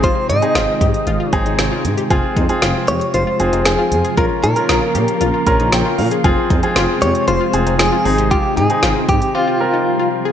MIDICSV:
0, 0, Header, 1, 7, 480
1, 0, Start_track
1, 0, Key_signature, -4, "minor"
1, 0, Tempo, 517241
1, 33, Time_signature, 4, 2, 24, 8
1, 9577, End_track
2, 0, Start_track
2, 0, Title_t, "Clean electric guitar"
2, 0, Program_c, 0, 27
2, 35, Note_on_c, 0, 72, 99
2, 270, Note_off_c, 0, 72, 0
2, 274, Note_on_c, 0, 75, 98
2, 1211, Note_off_c, 0, 75, 0
2, 1211, Note_on_c, 0, 73, 98
2, 1677, Note_off_c, 0, 73, 0
2, 2675, Note_on_c, 0, 73, 98
2, 2913, Note_off_c, 0, 73, 0
2, 2917, Note_on_c, 0, 72, 101
2, 3397, Note_on_c, 0, 68, 93
2, 3410, Note_off_c, 0, 72, 0
2, 3842, Note_off_c, 0, 68, 0
2, 3877, Note_on_c, 0, 70, 93
2, 3942, Note_off_c, 0, 70, 0
2, 4117, Note_on_c, 0, 70, 85
2, 5518, Note_off_c, 0, 70, 0
2, 6513, Note_on_c, 0, 73, 101
2, 6750, Note_off_c, 0, 73, 0
2, 6754, Note_on_c, 0, 72, 103
2, 7200, Note_off_c, 0, 72, 0
2, 7233, Note_on_c, 0, 68, 94
2, 7709, Note_off_c, 0, 68, 0
2, 7713, Note_on_c, 0, 67, 93
2, 7950, Note_off_c, 0, 67, 0
2, 7954, Note_on_c, 0, 68, 92
2, 8433, Note_off_c, 0, 68, 0
2, 8436, Note_on_c, 0, 67, 87
2, 8658, Note_off_c, 0, 67, 0
2, 8676, Note_on_c, 0, 65, 77
2, 9358, Note_off_c, 0, 65, 0
2, 9577, End_track
3, 0, Start_track
3, 0, Title_t, "Grand piano"
3, 0, Program_c, 1, 0
3, 0, Note_on_c, 1, 60, 76
3, 0, Note_on_c, 1, 63, 71
3, 0, Note_on_c, 1, 68, 82
3, 317, Note_off_c, 1, 60, 0
3, 317, Note_off_c, 1, 63, 0
3, 317, Note_off_c, 1, 68, 0
3, 393, Note_on_c, 1, 60, 69
3, 393, Note_on_c, 1, 68, 77
3, 394, Note_on_c, 1, 63, 62
3, 1126, Note_off_c, 1, 68, 0
3, 1127, Note_off_c, 1, 60, 0
3, 1127, Note_off_c, 1, 63, 0
3, 1233, Note_on_c, 1, 60, 87
3, 1233, Note_on_c, 1, 63, 82
3, 1233, Note_on_c, 1, 68, 99
3, 1862, Note_off_c, 1, 60, 0
3, 1862, Note_off_c, 1, 63, 0
3, 1862, Note_off_c, 1, 68, 0
3, 1953, Note_on_c, 1, 60, 88
3, 1953, Note_on_c, 1, 65, 80
3, 1953, Note_on_c, 1, 68, 98
3, 2267, Note_off_c, 1, 60, 0
3, 2267, Note_off_c, 1, 68, 0
3, 2268, Note_off_c, 1, 65, 0
3, 2313, Note_on_c, 1, 60, 82
3, 2313, Note_on_c, 1, 65, 74
3, 2313, Note_on_c, 1, 68, 91
3, 3046, Note_off_c, 1, 60, 0
3, 3046, Note_off_c, 1, 65, 0
3, 3046, Note_off_c, 1, 68, 0
3, 3153, Note_on_c, 1, 60, 76
3, 3153, Note_on_c, 1, 65, 68
3, 3153, Note_on_c, 1, 68, 81
3, 3782, Note_off_c, 1, 60, 0
3, 3782, Note_off_c, 1, 65, 0
3, 3782, Note_off_c, 1, 68, 0
3, 3873, Note_on_c, 1, 61, 71
3, 3873, Note_on_c, 1, 65, 67
3, 3873, Note_on_c, 1, 70, 83
3, 4187, Note_off_c, 1, 61, 0
3, 4188, Note_off_c, 1, 65, 0
3, 4188, Note_off_c, 1, 70, 0
3, 4233, Note_on_c, 1, 65, 63
3, 4234, Note_on_c, 1, 61, 68
3, 4234, Note_on_c, 1, 70, 76
3, 4966, Note_off_c, 1, 65, 0
3, 4967, Note_off_c, 1, 61, 0
3, 4967, Note_off_c, 1, 70, 0
3, 5073, Note_on_c, 1, 61, 86
3, 5074, Note_on_c, 1, 65, 78
3, 5074, Note_on_c, 1, 70, 96
3, 5074, Note_on_c, 1, 82, 69
3, 5297, Note_off_c, 1, 82, 0
3, 5314, Note_on_c, 1, 79, 72
3, 5537, Note_off_c, 1, 79, 0
3, 5553, Note_on_c, 1, 77, 70
3, 5702, Note_off_c, 1, 61, 0
3, 5702, Note_off_c, 1, 65, 0
3, 5702, Note_off_c, 1, 70, 0
3, 5777, Note_off_c, 1, 77, 0
3, 5793, Note_on_c, 1, 60, 85
3, 5793, Note_on_c, 1, 65, 81
3, 5793, Note_on_c, 1, 68, 98
3, 6107, Note_off_c, 1, 65, 0
3, 6108, Note_off_c, 1, 60, 0
3, 6108, Note_off_c, 1, 68, 0
3, 6154, Note_on_c, 1, 60, 84
3, 6154, Note_on_c, 1, 65, 74
3, 6154, Note_on_c, 1, 68, 91
3, 6887, Note_off_c, 1, 60, 0
3, 6887, Note_off_c, 1, 65, 0
3, 6887, Note_off_c, 1, 68, 0
3, 6993, Note_on_c, 1, 60, 75
3, 6993, Note_on_c, 1, 65, 67
3, 6993, Note_on_c, 1, 68, 83
3, 7459, Note_off_c, 1, 60, 0
3, 7459, Note_off_c, 1, 68, 0
3, 7473, Note_off_c, 1, 65, 0
3, 7473, Note_on_c, 1, 60, 76
3, 7473, Note_on_c, 1, 63, 69
3, 7473, Note_on_c, 1, 68, 86
3, 7997, Note_off_c, 1, 60, 0
3, 7997, Note_off_c, 1, 63, 0
3, 7997, Note_off_c, 1, 68, 0
3, 8073, Note_on_c, 1, 68, 77
3, 8074, Note_on_c, 1, 60, 69
3, 8074, Note_on_c, 1, 63, 63
3, 8660, Note_off_c, 1, 60, 0
3, 8673, Note_on_c, 1, 60, 81
3, 8673, Note_on_c, 1, 67, 86
3, 8674, Note_off_c, 1, 63, 0
3, 8674, Note_off_c, 1, 68, 0
3, 8674, Note_on_c, 1, 65, 75
3, 8883, Note_off_c, 1, 60, 0
3, 8883, Note_off_c, 1, 65, 0
3, 8883, Note_off_c, 1, 67, 0
3, 8913, Note_on_c, 1, 60, 73
3, 8913, Note_on_c, 1, 65, 66
3, 8913, Note_on_c, 1, 70, 83
3, 9541, Note_off_c, 1, 70, 0
3, 9542, Note_off_c, 1, 60, 0
3, 9542, Note_off_c, 1, 65, 0
3, 9577, End_track
4, 0, Start_track
4, 0, Title_t, "Synth arpeggio sound"
4, 0, Program_c, 2, 84
4, 34, Note_on_c, 2, 65, 95
4, 193, Note_off_c, 2, 65, 0
4, 274, Note_on_c, 2, 63, 78
4, 433, Note_off_c, 2, 63, 0
4, 514, Note_on_c, 2, 65, 88
4, 673, Note_off_c, 2, 65, 0
4, 754, Note_on_c, 2, 67, 81
4, 913, Note_off_c, 2, 67, 0
4, 994, Note_on_c, 2, 65, 86
4, 1073, Note_off_c, 2, 65, 0
4, 1114, Note_on_c, 2, 65, 76
4, 1273, Note_off_c, 2, 65, 0
4, 1354, Note_on_c, 2, 63, 77
4, 1513, Note_off_c, 2, 63, 0
4, 1594, Note_on_c, 2, 65, 76
4, 1753, Note_off_c, 2, 65, 0
4, 1834, Note_on_c, 2, 67, 77
4, 1913, Note_off_c, 2, 67, 0
4, 1954, Note_on_c, 2, 65, 97
4, 2113, Note_off_c, 2, 65, 0
4, 2194, Note_on_c, 2, 63, 81
4, 2353, Note_off_c, 2, 63, 0
4, 2435, Note_on_c, 2, 65, 86
4, 2594, Note_off_c, 2, 65, 0
4, 2674, Note_on_c, 2, 67, 80
4, 2833, Note_off_c, 2, 67, 0
4, 2915, Note_on_c, 2, 65, 83
4, 2994, Note_off_c, 2, 65, 0
4, 3035, Note_on_c, 2, 65, 76
4, 3194, Note_off_c, 2, 65, 0
4, 3275, Note_on_c, 2, 63, 76
4, 3434, Note_off_c, 2, 63, 0
4, 3514, Note_on_c, 2, 65, 75
4, 3673, Note_off_c, 2, 65, 0
4, 3754, Note_on_c, 2, 68, 77
4, 3834, Note_off_c, 2, 68, 0
4, 3874, Note_on_c, 2, 65, 96
4, 4033, Note_off_c, 2, 65, 0
4, 4114, Note_on_c, 2, 63, 82
4, 4273, Note_off_c, 2, 63, 0
4, 4354, Note_on_c, 2, 65, 87
4, 4513, Note_off_c, 2, 65, 0
4, 4594, Note_on_c, 2, 67, 81
4, 4753, Note_off_c, 2, 67, 0
4, 4834, Note_on_c, 2, 65, 86
4, 4914, Note_off_c, 2, 65, 0
4, 4954, Note_on_c, 2, 65, 76
4, 5113, Note_off_c, 2, 65, 0
4, 5195, Note_on_c, 2, 63, 77
4, 5354, Note_off_c, 2, 63, 0
4, 5434, Note_on_c, 2, 65, 74
4, 5593, Note_off_c, 2, 65, 0
4, 5674, Note_on_c, 2, 68, 77
4, 5754, Note_off_c, 2, 68, 0
4, 5793, Note_on_c, 2, 65, 95
4, 5953, Note_off_c, 2, 65, 0
4, 6034, Note_on_c, 2, 63, 77
4, 6193, Note_off_c, 2, 63, 0
4, 6274, Note_on_c, 2, 65, 86
4, 6433, Note_off_c, 2, 65, 0
4, 6513, Note_on_c, 2, 67, 79
4, 6673, Note_off_c, 2, 67, 0
4, 6754, Note_on_c, 2, 65, 85
4, 6833, Note_off_c, 2, 65, 0
4, 6874, Note_on_c, 2, 65, 77
4, 7033, Note_off_c, 2, 65, 0
4, 7114, Note_on_c, 2, 63, 77
4, 7273, Note_off_c, 2, 63, 0
4, 7354, Note_on_c, 2, 65, 75
4, 7513, Note_off_c, 2, 65, 0
4, 7593, Note_on_c, 2, 67, 77
4, 7673, Note_off_c, 2, 67, 0
4, 7713, Note_on_c, 2, 65, 96
4, 7873, Note_off_c, 2, 65, 0
4, 7954, Note_on_c, 2, 63, 78
4, 8113, Note_off_c, 2, 63, 0
4, 8194, Note_on_c, 2, 65, 85
4, 8353, Note_off_c, 2, 65, 0
4, 8434, Note_on_c, 2, 67, 77
4, 8593, Note_off_c, 2, 67, 0
4, 8674, Note_on_c, 2, 65, 84
4, 8754, Note_off_c, 2, 65, 0
4, 8795, Note_on_c, 2, 65, 76
4, 8954, Note_off_c, 2, 65, 0
4, 9035, Note_on_c, 2, 63, 78
4, 9194, Note_off_c, 2, 63, 0
4, 9275, Note_on_c, 2, 65, 77
4, 9434, Note_off_c, 2, 65, 0
4, 9515, Note_on_c, 2, 68, 78
4, 9577, Note_off_c, 2, 68, 0
4, 9577, End_track
5, 0, Start_track
5, 0, Title_t, "String machine"
5, 0, Program_c, 3, 50
5, 0, Note_on_c, 3, 48, 81
5, 0, Note_on_c, 3, 51, 75
5, 0, Note_on_c, 3, 56, 73
5, 0, Note_on_c, 3, 63, 89
5, 1932, Note_off_c, 3, 51, 0
5, 1932, Note_off_c, 3, 63, 0
5, 1956, Note_on_c, 3, 65, 90
5, 1957, Note_on_c, 3, 53, 75
5, 3836, Note_off_c, 3, 56, 0
5, 3837, Note_off_c, 3, 48, 0
5, 3875, Note_on_c, 3, 58, 75
5, 3876, Note_on_c, 3, 49, 81
5, 5775, Note_off_c, 3, 58, 0
5, 5776, Note_off_c, 3, 49, 0
5, 5794, Note_on_c, 3, 56, 74
5, 5795, Note_on_c, 3, 48, 85
5, 7438, Note_off_c, 3, 53, 0
5, 7438, Note_off_c, 3, 65, 0
5, 7475, Note_on_c, 3, 51, 74
5, 7476, Note_on_c, 3, 63, 87
5, 8645, Note_off_c, 3, 56, 0
5, 8662, Note_off_c, 3, 51, 0
5, 8663, Note_off_c, 3, 63, 0
5, 8675, Note_on_c, 3, 65, 87
5, 8676, Note_on_c, 3, 53, 72
5, 8676, Note_on_c, 3, 55, 69
5, 9577, Note_off_c, 3, 48, 0
5, 9577, Note_off_c, 3, 53, 0
5, 9577, Note_off_c, 3, 55, 0
5, 9577, Note_off_c, 3, 65, 0
5, 9577, End_track
6, 0, Start_track
6, 0, Title_t, "Analog synth bass"
6, 0, Program_c, 4, 38
6, 273, Note_on_c, 4, 44, 96
6, 368, Note_off_c, 4, 44, 0
6, 513, Note_on_c, 4, 32, 102
6, 608, Note_off_c, 4, 32, 0
6, 752, Note_on_c, 4, 44, 106
6, 848, Note_off_c, 4, 44, 0
6, 991, Note_on_c, 4, 32, 109
6, 1087, Note_off_c, 4, 32, 0
6, 1232, Note_on_c, 4, 32, 97
6, 1328, Note_off_c, 4, 32, 0
6, 1353, Note_on_c, 4, 32, 97
6, 1448, Note_off_c, 4, 32, 0
6, 1473, Note_on_c, 4, 32, 103
6, 1568, Note_off_c, 4, 32, 0
6, 1714, Note_on_c, 4, 44, 104
6, 1809, Note_off_c, 4, 44, 0
6, 1953, Note_on_c, 4, 29, 104
6, 2048, Note_off_c, 4, 29, 0
6, 2196, Note_on_c, 4, 41, 98
6, 2290, Note_off_c, 4, 41, 0
6, 2434, Note_on_c, 4, 29, 104
6, 2529, Note_off_c, 4, 29, 0
6, 2674, Note_on_c, 4, 41, 96
6, 2769, Note_off_c, 4, 41, 0
6, 2914, Note_on_c, 4, 29, 104
6, 3009, Note_off_c, 4, 29, 0
6, 3153, Note_on_c, 4, 29, 103
6, 3248, Note_off_c, 4, 29, 0
6, 3273, Note_on_c, 4, 29, 98
6, 3368, Note_off_c, 4, 29, 0
6, 3393, Note_on_c, 4, 29, 108
6, 3488, Note_off_c, 4, 29, 0
6, 3634, Note_on_c, 4, 41, 101
6, 3729, Note_off_c, 4, 41, 0
6, 3874, Note_on_c, 4, 34, 106
6, 3969, Note_off_c, 4, 34, 0
6, 4114, Note_on_c, 4, 46, 101
6, 4209, Note_off_c, 4, 46, 0
6, 4354, Note_on_c, 4, 34, 106
6, 4449, Note_off_c, 4, 34, 0
6, 4593, Note_on_c, 4, 46, 96
6, 4688, Note_off_c, 4, 46, 0
6, 4835, Note_on_c, 4, 34, 111
6, 4929, Note_off_c, 4, 34, 0
6, 5073, Note_on_c, 4, 34, 118
6, 5168, Note_off_c, 4, 34, 0
6, 5194, Note_on_c, 4, 34, 94
6, 5289, Note_off_c, 4, 34, 0
6, 5314, Note_on_c, 4, 34, 96
6, 5409, Note_off_c, 4, 34, 0
6, 5554, Note_on_c, 4, 46, 97
6, 5649, Note_off_c, 4, 46, 0
6, 5794, Note_on_c, 4, 29, 112
6, 5889, Note_off_c, 4, 29, 0
6, 6036, Note_on_c, 4, 41, 100
6, 6130, Note_off_c, 4, 41, 0
6, 6273, Note_on_c, 4, 29, 104
6, 6368, Note_off_c, 4, 29, 0
6, 6513, Note_on_c, 4, 41, 104
6, 6608, Note_off_c, 4, 41, 0
6, 6754, Note_on_c, 4, 29, 116
6, 6849, Note_off_c, 4, 29, 0
6, 6994, Note_on_c, 4, 29, 105
6, 7089, Note_off_c, 4, 29, 0
6, 7114, Note_on_c, 4, 29, 94
6, 7209, Note_off_c, 4, 29, 0
6, 7234, Note_on_c, 4, 29, 106
6, 7329, Note_off_c, 4, 29, 0
6, 7474, Note_on_c, 4, 32, 96
6, 7758, Note_off_c, 4, 32, 0
6, 7954, Note_on_c, 4, 44, 111
6, 8049, Note_off_c, 4, 44, 0
6, 8194, Note_on_c, 4, 32, 102
6, 8289, Note_off_c, 4, 32, 0
6, 8433, Note_on_c, 4, 44, 96
6, 8528, Note_off_c, 4, 44, 0
6, 9577, End_track
7, 0, Start_track
7, 0, Title_t, "Drums"
7, 33, Note_on_c, 9, 36, 103
7, 33, Note_on_c, 9, 42, 69
7, 126, Note_off_c, 9, 36, 0
7, 126, Note_off_c, 9, 42, 0
7, 276, Note_on_c, 9, 42, 69
7, 368, Note_off_c, 9, 42, 0
7, 393, Note_on_c, 9, 42, 49
7, 486, Note_off_c, 9, 42, 0
7, 513, Note_on_c, 9, 38, 110
7, 514, Note_on_c, 9, 42, 71
7, 606, Note_off_c, 9, 38, 0
7, 606, Note_off_c, 9, 42, 0
7, 752, Note_on_c, 9, 36, 103
7, 753, Note_on_c, 9, 42, 75
7, 845, Note_off_c, 9, 36, 0
7, 846, Note_off_c, 9, 42, 0
7, 874, Note_on_c, 9, 42, 48
7, 967, Note_off_c, 9, 42, 0
7, 991, Note_on_c, 9, 42, 68
7, 1084, Note_off_c, 9, 42, 0
7, 1232, Note_on_c, 9, 36, 86
7, 1232, Note_on_c, 9, 42, 70
7, 1325, Note_off_c, 9, 36, 0
7, 1325, Note_off_c, 9, 42, 0
7, 1354, Note_on_c, 9, 42, 46
7, 1447, Note_off_c, 9, 42, 0
7, 1473, Note_on_c, 9, 38, 122
7, 1476, Note_on_c, 9, 42, 83
7, 1565, Note_off_c, 9, 38, 0
7, 1569, Note_off_c, 9, 42, 0
7, 1715, Note_on_c, 9, 42, 72
7, 1808, Note_off_c, 9, 42, 0
7, 1834, Note_on_c, 9, 42, 45
7, 1926, Note_off_c, 9, 42, 0
7, 1953, Note_on_c, 9, 36, 103
7, 1953, Note_on_c, 9, 42, 74
7, 2046, Note_off_c, 9, 36, 0
7, 2046, Note_off_c, 9, 42, 0
7, 2195, Note_on_c, 9, 42, 68
7, 2196, Note_on_c, 9, 36, 85
7, 2288, Note_off_c, 9, 36, 0
7, 2288, Note_off_c, 9, 42, 0
7, 2312, Note_on_c, 9, 42, 51
7, 2405, Note_off_c, 9, 42, 0
7, 2433, Note_on_c, 9, 38, 109
7, 2433, Note_on_c, 9, 42, 70
7, 2525, Note_off_c, 9, 38, 0
7, 2526, Note_off_c, 9, 42, 0
7, 2673, Note_on_c, 9, 42, 75
7, 2765, Note_off_c, 9, 42, 0
7, 2795, Note_on_c, 9, 42, 47
7, 2888, Note_off_c, 9, 42, 0
7, 2913, Note_on_c, 9, 42, 72
7, 3005, Note_off_c, 9, 42, 0
7, 3152, Note_on_c, 9, 42, 72
7, 3245, Note_off_c, 9, 42, 0
7, 3275, Note_on_c, 9, 42, 49
7, 3368, Note_off_c, 9, 42, 0
7, 3392, Note_on_c, 9, 38, 126
7, 3395, Note_on_c, 9, 42, 88
7, 3485, Note_off_c, 9, 38, 0
7, 3488, Note_off_c, 9, 42, 0
7, 3635, Note_on_c, 9, 42, 74
7, 3728, Note_off_c, 9, 42, 0
7, 3754, Note_on_c, 9, 42, 43
7, 3847, Note_off_c, 9, 42, 0
7, 3874, Note_on_c, 9, 42, 72
7, 3875, Note_on_c, 9, 36, 112
7, 3967, Note_off_c, 9, 36, 0
7, 3967, Note_off_c, 9, 42, 0
7, 4116, Note_on_c, 9, 42, 68
7, 4209, Note_off_c, 9, 42, 0
7, 4232, Note_on_c, 9, 42, 51
7, 4325, Note_off_c, 9, 42, 0
7, 4354, Note_on_c, 9, 38, 111
7, 4354, Note_on_c, 9, 42, 70
7, 4446, Note_off_c, 9, 38, 0
7, 4447, Note_off_c, 9, 42, 0
7, 4593, Note_on_c, 9, 42, 80
7, 4686, Note_off_c, 9, 42, 0
7, 4714, Note_on_c, 9, 42, 47
7, 4807, Note_off_c, 9, 42, 0
7, 4833, Note_on_c, 9, 42, 69
7, 4925, Note_off_c, 9, 42, 0
7, 5072, Note_on_c, 9, 42, 72
7, 5073, Note_on_c, 9, 36, 85
7, 5165, Note_off_c, 9, 42, 0
7, 5166, Note_off_c, 9, 36, 0
7, 5194, Note_on_c, 9, 42, 49
7, 5287, Note_off_c, 9, 42, 0
7, 5313, Note_on_c, 9, 38, 124
7, 5316, Note_on_c, 9, 42, 87
7, 5406, Note_off_c, 9, 38, 0
7, 5409, Note_off_c, 9, 42, 0
7, 5554, Note_on_c, 9, 46, 72
7, 5647, Note_off_c, 9, 46, 0
7, 5673, Note_on_c, 9, 42, 44
7, 5766, Note_off_c, 9, 42, 0
7, 5794, Note_on_c, 9, 36, 112
7, 5794, Note_on_c, 9, 42, 69
7, 5886, Note_off_c, 9, 36, 0
7, 5887, Note_off_c, 9, 42, 0
7, 6035, Note_on_c, 9, 42, 67
7, 6036, Note_on_c, 9, 36, 87
7, 6128, Note_off_c, 9, 42, 0
7, 6129, Note_off_c, 9, 36, 0
7, 6152, Note_on_c, 9, 42, 50
7, 6245, Note_off_c, 9, 42, 0
7, 6273, Note_on_c, 9, 38, 109
7, 6273, Note_on_c, 9, 42, 71
7, 6366, Note_off_c, 9, 38, 0
7, 6366, Note_off_c, 9, 42, 0
7, 6514, Note_on_c, 9, 42, 76
7, 6607, Note_off_c, 9, 42, 0
7, 6635, Note_on_c, 9, 42, 48
7, 6728, Note_off_c, 9, 42, 0
7, 6752, Note_on_c, 9, 42, 69
7, 6845, Note_off_c, 9, 42, 0
7, 6992, Note_on_c, 9, 42, 74
7, 7085, Note_off_c, 9, 42, 0
7, 7114, Note_on_c, 9, 42, 48
7, 7207, Note_off_c, 9, 42, 0
7, 7233, Note_on_c, 9, 38, 127
7, 7236, Note_on_c, 9, 42, 85
7, 7326, Note_off_c, 9, 38, 0
7, 7329, Note_off_c, 9, 42, 0
7, 7475, Note_on_c, 9, 46, 74
7, 7568, Note_off_c, 9, 46, 0
7, 7595, Note_on_c, 9, 42, 44
7, 7688, Note_off_c, 9, 42, 0
7, 7714, Note_on_c, 9, 36, 107
7, 7714, Note_on_c, 9, 42, 72
7, 7806, Note_off_c, 9, 42, 0
7, 7807, Note_off_c, 9, 36, 0
7, 7955, Note_on_c, 9, 42, 70
7, 8048, Note_off_c, 9, 42, 0
7, 8072, Note_on_c, 9, 42, 50
7, 8164, Note_off_c, 9, 42, 0
7, 8192, Note_on_c, 9, 38, 108
7, 8192, Note_on_c, 9, 42, 70
7, 8285, Note_off_c, 9, 38, 0
7, 8285, Note_off_c, 9, 42, 0
7, 8432, Note_on_c, 9, 42, 78
7, 8433, Note_on_c, 9, 36, 106
7, 8525, Note_off_c, 9, 36, 0
7, 8525, Note_off_c, 9, 42, 0
7, 8554, Note_on_c, 9, 42, 49
7, 8647, Note_off_c, 9, 42, 0
7, 9577, End_track
0, 0, End_of_file